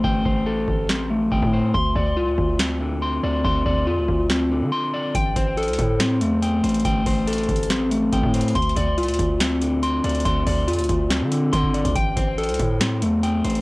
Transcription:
Already playing: clean electric guitar A3 C4 C5
0.04 808-style bass A1, clean electric guitar G5, kick
0.25 808-style bass A1, clean electric guitar C5, kick
0.46 clean electric guitar A4
0.68 808-style bass A1, kick
0.89 clean electric guitar C4, snare
1.10 clean electric guitar A3
1.32 808-style bass A1, clean electric guitar G5, kick
1.42 808-style bass A2, kick
1.53 clean electric guitar C5
1.74 808-style bass D2, clean electric guitar C6, kick
1.96 808-style bass D2, clean electric guitar D5, kick
2.17 808-style bass C2, clean electric guitar F4
2.27 808-style bass D2
2.38 808-style bass D2, kick
2.59 clean electric guitar C4, snare
2.81 clean electric guitar D3
3.02 clean electric guitar C6
3.23 808-style bass D2, clean electric guitar D5
3.44 808-style bass D2, clean electric guitar C6, kick
3.66 808-style bass D2, clean electric guitar D5, kick
3.87 808-style bass F2, clean electric guitar F4
3.98 808-style bass D2
4.08 808-style bass D2, kick
4.29 clean electric guitar C4, snare
4.51 clean electric guitar D3
4.61 808-style bass D3
4.72 clean electric guitar C6
4.94 clean electric guitar D5
5.15 808-style bass A1, clean electric guitar G5, kick, closed hi-hat
5.36 808-style bass A1, clean electric guitar C5, kick, closed hi-hat
5.57 clean electric guitar A4, closed hi-hat
5.63 closed hi-hat
5.68 808-style bass C2, closed hi-hat
5.73 closed hi-hat
5.79 808-style bass A2, kick, closed hi-hat
6.00 clean electric guitar C4, snare, closed hi-hat
6.21 808-style bass E2, clean electric guitar A3, closed hi-hat
6.42 clean electric guitar G5, closed hi-hat
6.64 808-style bass A1, clean electric guitar C5, closed hi-hat
6.69 closed hi-hat
6.74 closed hi-hat
6.80 closed hi-hat
6.85 808-style bass A1, clean electric guitar G5, kick, closed hi-hat
7.06 808-style bass A1, clean electric guitar C5, kick, open hi-hat
7.27 clean electric guitar A4, closed hi-hat
7.33 closed hi-hat
7.38 closed hi-hat
7.43 closed hi-hat
7.49 808-style bass A1, kick, closed hi-hat
7.56 closed hi-hat
7.63 closed hi-hat
7.70 clean electric guitar C4, snare, closed hi-hat
7.91 clean electric guitar A3, closed hi-hat
8.13 808-style bass A1, clean electric guitar G5, kick, closed hi-hat
8.23 808-style bass A2, kick
8.34 clean electric guitar C5, closed hi-hat
8.41 closed hi-hat
8.48 closed hi-hat
8.55 808-style bass D2, clean electric guitar C6, kick, closed hi-hat
8.62 closed hi-hat
8.69 closed hi-hat
8.76 808-style bass D2, clean electric guitar D5, kick, closed hi-hat
8.98 808-style bass C2, clean electric guitar F4, closed hi-hat
9.03 closed hi-hat
9.08 808-style bass D2, closed hi-hat
9.14 closed hi-hat
9.19 808-style bass D2, kick, closed hi-hat
9.40 clean electric guitar C4, snare, closed hi-hat
9.61 clean electric guitar D3, closed hi-hat
9.83 clean electric guitar C6, closed hi-hat
10.04 808-style bass D2, clean electric guitar D5, closed hi-hat
10.09 closed hi-hat
10.15 closed hi-hat
10.20 closed hi-hat
10.25 808-style bass D2, clean electric guitar C6, kick, closed hi-hat
10.47 808-style bass D2, clean electric guitar D5, kick, open hi-hat
10.68 808-style bass F2, clean electric guitar F4, closed hi-hat
10.73 closed hi-hat
10.79 808-style bass D2, closed hi-hat
10.84 closed hi-hat
10.89 808-style bass D2, kick, closed hi-hat
11.10 clean electric guitar C4, snare, closed hi-hat
11.21 808-style bass D3
11.32 clean electric guitar D3, closed hi-hat
11.53 808-style bass D3, clean electric guitar C6, kick, closed hi-hat
11.64 kick
11.74 clean electric guitar D5, closed hi-hat
11.85 808-style bass D2, kick, closed hi-hat
11.96 808-style bass A1, clean electric guitar G5, kick, closed hi-hat
12.17 808-style bass A1, clean electric guitar C5, kick, closed hi-hat
12.38 clean electric guitar A4, closed hi-hat
12.44 closed hi-hat
12.49 808-style bass C2, closed hi-hat
12.54 closed hi-hat
12.59 808-style bass A2, kick, closed hi-hat
12.81 clean electric guitar C4, snare, closed hi-hat
13.02 808-style bass E2, clean electric guitar A3, closed hi-hat
13.23 clean electric guitar G5, closed hi-hat
13.44 808-style bass A1, clean electric guitar C5, closed hi-hat
13.50 closed hi-hat
13.55 closed hi-hat

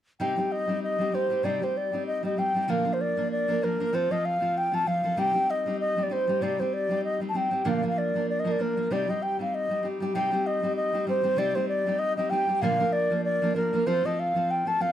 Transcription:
0.20 steel-string acoustic guitar C3 G3 C4 D#4 G4, flute G5
0.36 steel-string acoustic guitar G3 C4 D#4 G4
0.52 flute D#5
0.67 steel-string acoustic guitar G3 C4 D#4 G4
0.83 flute D#5
0.99 steel-string acoustic guitar G3 C4 D#4 G4
1.12 steel-string acoustic guitar G3 C4 D#4 G4, flute C5
1.30 steel-string acoustic guitar G3 C4 D#4 G4
1.43 steel-string acoustic guitar C3 G3 C4 D#4 G4, flute D5
1.61 steel-string acoustic guitar G3 C4 D#4 G4, flute C5
1.77 flute D5
1.92 steel-string acoustic guitar G3 C4 D#4 G4
2.07 flute D#5
2.23 steel-string acoustic guitar G3 C4 D#4 G4, flute D#5
2.37 steel-string acoustic guitar G3 C4 D#4 G4, flute G5
2.55 steel-string acoustic guitar G3 C4 D#4 G4
2.63 flute G5
2.68 steel-string acoustic guitar A#2 D3 F3 A#3 D4 A#4, flute F5
2.85 steel-string acoustic guitar F3 A#3 D4 A#4
2.93 flute C5
3.01 flute D5
3.16 steel-string acoustic guitar F3 A#3 D4 A#4
3.32 flute D5
3.48 steel-string acoustic guitar F3 A#3 D4 A#4
3.61 steel-string acoustic guitar F3 A#3 D4 A#4, flute A#4
3.79 steel-string acoustic guitar F3 A#3 D4 A#4
3.93 steel-string acoustic guitar F3 C4 F4 A4, flute C5
4.10 steel-string acoustic guitar F3 C4 F4 A4, flute D#5
4.25 flute F5
4.40 steel-string acoustic guitar F3 C4 F4 A4
4.58 flute G5
4.71 steel-string acoustic guitar F3 C4 F4 A4, flute A5
4.86 steel-string acoustic guitar F3 C4 F4 A4, flute F5
5.03 steel-string acoustic guitar F3 C4 F4 A4
5.16 steel-string acoustic guitar C3 G3 C4 D#4 G4, flute G5
5.34 steel-string acoustic guitar G3 C4 D#4 G4
5.50 flute D#5
5.66 steel-string acoustic guitar G3 C4 D#4 G4
5.80 flute D#5
5.97 steel-string acoustic guitar G3 C4 D#4 G4
6.03 flute D5
6.10 steel-string acoustic guitar G3 C4 D#4 G4, flute C5
6.27 steel-string acoustic guitar G3 C4 D#4 G4
6.41 steel-string acoustic guitar C3 G3 C4 D#4 G4, flute D5
6.58 steel-string acoustic guitar G3 C4 D#4 G4, flute C5
6.74 flute D5
6.89 steel-string acoustic guitar G3 C4 D#4 G4
7.04 flute D#5
7.20 steel-string acoustic guitar G3 C4 D#4 G4
7.29 flute A5
7.34 steel-string acoustic guitar G3 C4 D#4 G4, flute G5
7.50 steel-string acoustic guitar G3 C4 D#4 G4
7.64 steel-string acoustic guitar A#2 D3 F3 A#3 D4 A#4
7.68 flute F5
7.77 flute F5
7.83 steel-string acoustic guitar F3 A#3 D4 A#4
7.87 flute F5
7.98 flute D5
8.14 steel-string acoustic guitar F3 A#3 D4 A#4
8.30 flute D5
8.40 flute D#5
8.44 steel-string acoustic guitar F3 A#3 D4 A#4
8.52 flute D5
8.58 steel-string acoustic guitar F3 A#3 D4 A#4, flute A#4
8.77 steel-string acoustic guitar F3 A#3 D4 A#4
8.91 steel-string acoustic guitar C3 G3 C4 D#4 G4, flute D5
9.08 steel-string acoustic guitar G3 C4 D#4 G4, flute D#5
9.23 flute G5
9.39 steel-string acoustic guitar G3 C4 D#4 G4, flute F5
9.55 flute D#5
9.69 steel-string acoustic guitar G3 C4 D#4 G4
9.83 steel-string acoustic guitar G3 C4 D#4 G4
10.00 steel-string acoustic guitar G3 C4 D#4 G4
10.14 steel-string acoustic guitar C3 G3 C4 D#4 G4, flute G5
10.32 steel-string acoustic guitar G3 C4 D#4 G4
10.47 flute D#5
10.62 steel-string acoustic guitar G3 C4 D#4 G4
10.76 flute D#5
10.93 steel-string acoustic guitar G3 C4 D#4 G4
11.07 steel-string acoustic guitar G3 C4 D#4 G4, flute C5
11.23 steel-string acoustic guitar G3 C4 D#4 G4
11.36 steel-string acoustic guitar C3 G3 C4 D#4 G4, flute D5
11.55 steel-string acoustic guitar G3 C4 D#4 G4, flute C5
11.69 flute D5
11.86 steel-string acoustic guitar G3 C4 D#4 G4
11.99 flute D#5
12.17 steel-string acoustic guitar G3 C4 D#4 G4, flute D#5
12.30 steel-string acoustic guitar G3 C4 D#4 G4, flute G5
12.47 steel-string acoustic guitar G3 C4 D#4 G4
12.61 steel-string acoustic guitar A#2 D3 F3 A#3 D4 A#4, flute F5
12.78 steel-string acoustic guitar F3 A#3 D4 A#4
12.93 flute D5
13.10 steel-string acoustic guitar F3 A#3 D4 A#4
13.25 flute D5
13.42 steel-string acoustic guitar F3 A#3 D4 A#4
13.54 steel-string acoustic guitar F3 A#3 D4 A#4, flute A#4
13.73 steel-string acoustic guitar F3 A#3 D4 A#4
13.86 steel-string acoustic guitar F3 C4 F4 A4, flute C5
14.04 steel-string acoustic guitar F3 C4 F4 A4, flute D#5
14.20 flute F5
14.35 steel-string acoustic guitar F3 C4 F4 A4
14.51 flute G5
14.65 steel-string acoustic guitar F3 C4 F4 A4, flute A5
14.79 steel-string acoustic guitar F3 C4 F4 A4, flute F5

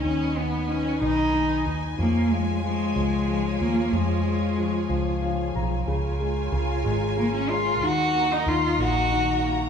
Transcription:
Already playing: string section F#3 D#5
0.04 fingered electric bass D#2, grand piano D#3, cello C#4, string section B4 G#5
0.36 grand piano D#3, cello B3
0.69 grand piano D#3, cello C#4
1.01 fingered electric bass B1, grand piano D#3, cello D#4
1.33 grand piano D#3
1.66 fingered electric bass D#2, grand piano D#3
1.98 fingered electric bass F2, grand piano F3, cello A#3, string section F4 G#4 C#5
2.31 grand piano F3, cello G#3
2.63 grand piano F3, cello G#3
2.95 fingered electric bass C#2, grand piano F3
3.28 grand piano F3
3.60 fingered electric bass D#2, grand piano F3, cello A#3
3.92 fingered electric bass F2, grand piano F3, cello G#3
4.25 grand piano F3
4.58 grand piano F3
4.89 fingered electric bass C#2, grand piano F3
5.22 grand piano F3 F5
5.55 fingered electric bass B1, grand piano F3 A#5
5.87 fingered electric bass C#2, grand piano C#3, string section F4 A#4 C#5 G#5
6.20 grand piano G#3
6.52 fingered electric bass C#2, grand piano C#3
6.84 fingered electric bass G#1, grand piano G#3
7.17 grand piano C#3, cello A#3
7.33 cello C#4
7.49 grand piano G#3, cello F4
7.81 fingered electric bass D#2, grand piano D#3, string section F#3 D#5 A#5, cello F#4
8.15 grand piano A#3
8.32 cello D#4
8.46 fingered electric bass D#2, grand piano D#3, cello F4
8.79 fingered electric bass A#1, grand piano A#3, cello F#4
9.12 grand piano D#3
9.45 grand piano A#3

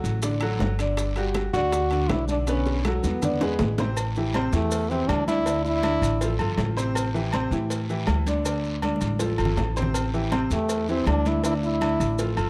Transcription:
Already playing: grand piano F#3 F#4 A4
0.04 upright bass A1, high bongo, short guiro, maracas
0.22 grand piano D3 D4 D5, high bongo, high conga, high timbale, long guiro, maracas
0.41 grand piano F#3 F#4 A4, high conga, high timbale, maracas
0.60 upright bass G1, high bongo, low bongo, high conga, low timbale, short guiro, maracas
0.79 grand piano D3 D4 D5, high bongo, high conga, high timbale, short guiro, maracas
0.97 high bongo, high conga, high timbale, long guiro, maracas
1.16 grand piano G3 F#4 G4, high bongo, high conga, high timbale, maracas
1.34 high bongo, high conga, high timbale, low timbale, short guiro, maracas
1.53 upright bass D2, grand piano D3 D4 D5, french horn F#4, high bongo, high conga, short guiro, maracas
1.72 high bongo, high conga, high timbale, long guiro, maracas
1.91 grand piano D3 D4 D5, high conga, high timbale, maracas
2.09 upright bass B1, french horn E4, high bongo, low bongo, high conga, high timbale, low timbale, short guiro, maracas
2.28 grand piano D3 D4 D5, french horn D4, high bongo, high conga, short guiro, maracas
2.47 grand piano D3 B3 B4, french horn C#4, high bongo, high conga, high timbale, long guiro, maracas
2.66 high bongo, high conga, maracas
2.85 grand piano F#3 F#4 A4, high bongo, high conga, high timbale, low timbale, short guiro, maracas
3.03 upright bass E2, french horn B3, low bongo, high conga, short guiro, maracas
3.22 grand piano D3 D4 D5, low bongo, low conga, high timbale, long guiro, maracas
3.41 grand piano G#3 G#4 B4, low bongo, low conga, high timbale, maracas
3.59 upright bass A1, low conga, low timbale, short guiro, maracas
3.78 grand piano C3 C4 C5, low bongo, low conga, low timbale, short guiro, maracas
3.97 cowbell, high conga, low agogo, long guiro, maracas
4.16 grand piano E3 E4 G4, high conga, maracas
4.34 grand piano C3 C4 C5, cowbell, high conga, low timbale, low agogo, short guiro, maracas
4.53 upright bass E2, grand piano E3 E4 G4, french horn A3, high conga, short guiro, maracas
4.71 cowbell, high conga, low agogo, long guiro, maracas
4.90 grand piano E3 E4 G4, french horn C4, high conga, maracas
5.08 upright bass D2, french horn D4, cowbell, high conga, low timbale, low agogo, short guiro, maracas
5.28 grand piano D3 D4 D5, french horn E4, cowbell, high conga, short guiro, maracas
5.46 grand piano D3 D4 D5, cowbell, high conga, low agogo, long guiro, maracas
5.65 french horn E4, high conga, maracas
5.83 grand piano D3 D4 D5, cowbell, high conga, low timbale, low agogo, short guiro, maracas
6.02 upright bass A1, low agogo, short guiro, maracas
6.21 grand piano F3 F4 A4, cowbell, high conga, long guiro, maracas
6.39 upright bass G1, grand piano F3 F4 A4, high conga, low agogo, maracas
6.58 upright bass A1, cowbell, high conga, low timbale, low agogo, short guiro, maracas
6.76 grand piano C3 C4 C5, high conga, short guiro, maracas
6.95 cowbell, high conga, low agogo, long guiro, maracas
7.14 grand piano E3 E4 G4, high conga, maracas
7.33 grand piano C3 C4 C5, cowbell, high conga, low timbale, low agogo, short guiro, maracas
7.51 upright bass A2, grand piano E3 E4 G4, high conga, short guiro, maracas
7.70 cowbell, high conga, low agogo, long guiro, maracas
7.89 grand piano E3 E4 G4, high conga, maracas
8.07 upright bass D2, cowbell, high conga, low timbale, low agogo, short guiro, maracas
8.27 grand piano D3 D4 D5, cowbell, high conga, short guiro, maracas
8.45 grand piano D3 D4 D5, cowbell, low agogo, long guiro, maracas
8.64 high conga, maracas
8.82 grand piano D3 D4 D5, cowbell, high conga, low timbale, low agogo, short guiro, maracas
8.96 high conga
9.01 upright bass A1, low agogo, short guiro, maracas
9.08 high conga
9.19 grand piano F3 F4 A4, cowbell, high conga, long guiro, maracas
9.38 upright bass G1, grand piano F3 F4 A4, low agogo, maracas
9.45 low conga
9.57 upright bass A1, cowbell, low conga, low timbale, low agogo, short guiro, maracas
9.76 grand piano C3 C4 C5, short guiro, maracas
9.82 low conga
9.94 cowbell, low agogo, long guiro, maracas
10.14 grand piano E3 E4 G4, high conga, maracas
10.32 grand piano C3 C4 C5, cowbell, high conga, low timbale, low agogo, short guiro, maracas
10.50 upright bass E2, grand piano E3 E4 G4, french horn A3, high conga, short guiro, maracas
10.69 cowbell, high conga, low agogo, long guiro, maracas
10.88 grand piano E3 E4 G4, french horn C4, high conga, maracas
11.06 upright bass D2, french horn D4, cowbell, high conga, low timbale, low agogo, short guiro, maracas
11.25 grand piano D3 D4 D5, french horn E4, cowbell, high conga, short guiro, maracas
11.44 grand piano D3 D4 D5, french horn E4, cowbell, high conga, low agogo, long guiro, maracas
11.63 french horn E4, high conga, maracas
11.81 grand piano D3 D4 D5, cowbell, high conga, low timbale, low agogo, short guiro, maracas
12.00 upright bass A1, low agogo, short guiro, maracas
12.19 grand piano F3 F4 A4, cowbell, high conga, long guiro, maracas
12.36 upright bass G1, grand piano F3 F4 A4, high conga, low agogo, maracas

